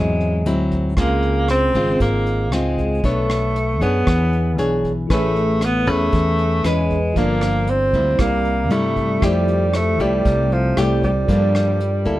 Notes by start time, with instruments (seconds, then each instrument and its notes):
Already playing: fingered electric bass E2, nylon-string guitar G#2 F#3 C4 E4, alto saxophone G#3
0.20 closed hi-hat
0.46 fingered electric bass D2, nylon-string guitar F#3 C4 E4, closed hi-hat
0.71 kick, closed hi-hat
0.97 fingered electric bass C#2, nylon-string guitar C#3 G#3 C4 F4, alto saxophone A#3, kick, cross-stick, closed hi-hat
1.22 closed hi-hat
1.48 alto saxophone C4, cross-stick, closed hi-hat
1.74 fingered electric bass G#1, nylon-string guitar G#3 C4 F4, kick, closed hi-hat
2.00 fingered electric bass G#1, nylon-string guitar G#2, alto saxophone A#3, kick, closed hi-hat
2.26 closed hi-hat
2.52 fingered electric bass C#2, nylon-string guitar G#3 C4 F4, alto saxophone G#3, cross-stick, closed hi-hat
2.78 kick, closed hi-hat
3.04 fingered electric bass B1, alto saxophone A3, nylon-string guitar B3 D4 A4 C#5, kick, closed hi-hat
3.30 cross-stick, closed hi-hat
3.56 closed hi-hat
3.81 fingered electric bass F#2, alto saxophone B3, nylon-string guitar D4 G#4 C#5, kick, closed hi-hat
4.07 fingered electric bass E2, nylon-string guitar E3, kick, cross-stick, closed hi-hat
4.33 closed hi-hat
4.58 fingered electric bass B1, nylon-string guitar D4 G#4 C#5, closed hi-hat
4.84 kick, closed hi-hat
5.07 fingered electric bass A1, nylon-string guitar A3 C#4 G#4, tine electric piano E4 G#4, kick, cross-stick, closed hi-hat
5.11 alto saxophone A3, tine electric piano B4 C#5, nylon-string guitar B4
5.36 closed hi-hat
5.61 alto saxophone B3, cross-stick, closed hi-hat
5.87 fingered electric bass E2, alto saxophone A3, nylon-string guitar C#4 G#4 B4, kick, closed hi-hat
6.12 fingered electric bass E2, nylon-string guitar E3, kick, closed hi-hat
6.39 closed hi-hat
6.63 fingered electric bass E2, alto saxophone G#3, nylon-string guitar C#4 G#4 B4, tine electric piano E4 G#4 B4 C#5, cross-stick, closed hi-hat
6.90 kick, closed hi-hat
7.13 fingered electric bass G1, nylon-string guitar G2 F3 A#3 D4, tine electric piano F4 A4, kick, closed hi-hat
7.18 alto saxophone A#3, tine electric piano D5
7.41 cross-stick, closed hi-hat
7.67 alto saxophone C4, closed hi-hat
7.93 fingered electric bass D2, nylon-string guitar G3 A#3 E4, kick, closed hi-hat
8.17 fingered electric bass C2, nylon-string guitar C3, tine electric piano E4 G4 A#5, kick, cross-stick, closed hi-hat
8.21 alto saxophone A#3, tine electric piano D5
8.45 closed hi-hat
8.70 fingered electric bass G2, nylon-string guitar G3 E4, alto saxophone A3, closed hi-hat
8.96 kick, closed hi-hat
9.19 fingered electric bass F2, nylon-string guitar F3 A3 E4, tine electric piano E4 G4, kick, cross-stick, closed hi-hat
9.23 alto saxophone G3, nylon-string guitar G4, tine electric piano A4 C5
9.48 closed hi-hat
9.74 alto saxophone A3, cross-stick, closed hi-hat
9.99 fingered electric bass C2, alto saxophone G3, nylon-string guitar A3 E4 G4, kick, closed hi-hat
10.25 fingered electric bass C2, nylon-string guitar C3, kick, closed hi-hat
10.52 alto saxophone F3, closed hi-hat
10.75 fingered electric bass C2, nylon-string guitar A3 E4 G4, tine electric piano E4 G4 A4 C5, cross-stick, closed hi-hat
10.79 alto saxophone G3
11.03 alto saxophone G3, kick, closed hi-hat
11.25 fingered electric bass G2, nylon-string guitar G2 F3 A#3 D4, tine electric piano F4 A4 A#4, kick, closed hi-hat
11.31 tine electric piano D5
11.55 cross-stick, closed hi-hat
11.80 closed hi-hat
12.05 fingered electric bass D2, nylon-string guitar A#3 E4 A4, kick, closed hi-hat